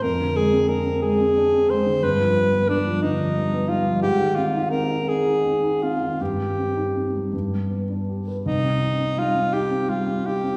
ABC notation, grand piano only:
X:1
M:6/8
L:1/16
Q:3/8=56
K:Cm
V:1 name="Grand piano"
F,, D, A, C D C A, C D C A, D, | G,, F, G, =B, G, F, D, F, G, B, G, F, | A,, E, C E C E C E C E C E, | G,, G, C E C G, G,, G, =B, D G =B |
C,, C E C G, C E C G, C E C |]